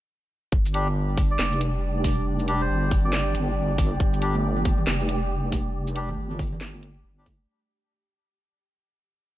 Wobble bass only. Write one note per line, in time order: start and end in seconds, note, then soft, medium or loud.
0.52 1.38 G1 loud
1.39 2.68 F1 loud
2.69 3.33 G1 loud
3.35 3.99 G1 loud
4.00 4.86 G1 loud
4.87 6.16 F1 medium
6.17 7.03 G1 loud
7.04 7.47 G1 loud